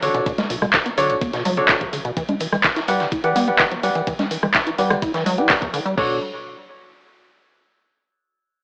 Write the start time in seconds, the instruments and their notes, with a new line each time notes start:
0.02 analog synth bass A1, acid bass D3, grand piano D4 F#4 A4 C#5, open hi-hat, ride, maracas
0.14 acid bass B2, closed hi-hat, ride, maracas
0.26 acid bass B2, kick, closed hi-hat, ride, maracas
0.38 acid bass A3, snare, closed hi-hat, low conga, maracas
0.50 analog synth bass B1, acid bass B2, open hi-hat, ride, maracas
0.62 acid bass B2, cross-stick, low conga, maracas
0.73 acid bass B2, kick, snare, clap, closed hi-hat, ride, maracas
0.86 acid bass B3, closed hi-hat, ride, maracas
0.98 analog synth bass B1, acid bass D3, grand piano D4 F#4 A4 C#5, open hi-hat, ride, maracas
1.10 acid bass A2, closed hi-hat, ride, maracas
1.21 acid bass B3, kick, closed hi-hat, ride, maracas
1.33 acid bass B2, snare, closed hi-hat, maracas
1.45 analog synth bass F#1, acid bass F#3, open hi-hat, ride, low conga, maracas
1.57 acid bass B2, grand piano D4 F#4 A4 C#5, closed hi-hat, maracas
1.69 acid bass B2, kick, snare, clap, closed hi-hat, ride, maracas
1.81 acid bass C#3, kick, closed hi-hat
1.93 analog synth bass A1, acid bass D3, open hi-hat, ride, maracas
2.05 acid bass B2, closed hi-hat, maracas
2.17 acid bass E3, kick, closed hi-hat, ride, maracas
2.28 acid bass D4, closed hi-hat, low conga, maracas
2.40 acid bass E3, open hi-hat, ride, maracas
2.52 acid bass E3, cross-stick, low conga, maracas
2.64 acid bass E3, kick, snare, clap, closed hi-hat, ride, maracas
2.76 acid bass E4, snare, closed hi-hat, maracas
2.88 acid bass G3, grand piano G4 B4 D5 F#5, open hi-hat, ride, maracas
3.00 acid bass D3, snare, closed hi-hat, maracas
3.12 acid bass E4, kick, closed hi-hat, ride, maracas
3.24 acid bass E3, grand piano G4 B4 D5 F#5, closed hi-hat, maracas
3.36 acid bass B3, open hi-hat, ride, low conga, maracas
3.47 acid bass E3, grand piano G4 B4 D5 F#5, closed hi-hat, maracas
3.59 acid bass E3, kick, snare, clap, closed hi-hat, ride, maracas
3.71 acid bass F#3, closed hi-hat
3.83 acid bass G3, grand piano G4 B4 D5 F#5, open hi-hat, ride, maracas
3.95 acid bass E3, closed hi-hat, ride, maracas
4.07 acid bass E3, kick, closed hi-hat, ride, maracas
4.19 acid bass D4, snare, closed hi-hat, low conga, maracas
4.31 acid bass E3, open hi-hat, ride, maracas
4.42 acid bass E3, cross-stick, low conga, maracas
4.54 acid bass E3, kick, snare, clap, closed hi-hat, ride, maracas
4.67 acid bass E4, closed hi-hat, ride, maracas
4.78 acid bass G3, grand piano G4 B4 D5 F#5, open hi-hat, ride, maracas
4.90 acid bass D3, cross-stick, closed hi-hat, ride, low conga, maracas
5.02 acid bass E4, kick, closed hi-hat, ride, maracas
5.14 acid bass E3, snare, closed hi-hat, maracas
5.26 acid bass F#3, open hi-hat, ride, low conga, maracas
5.38 acid bass E4, grand piano G4 B4 D5 F#5, closed hi-hat, maracas
5.49 acid bass E2, kick, snare, clap, closed hi-hat, ride, maracas
5.62 acid bass E2, kick, closed hi-hat
5.74 acid bass D3, open hi-hat, ride, maracas
5.86 acid bass G3, closed hi-hat, maracas
5.98 analog synth bass B1, acid bass B2, grand piano D4 F#4 A4 C#5, kick, crash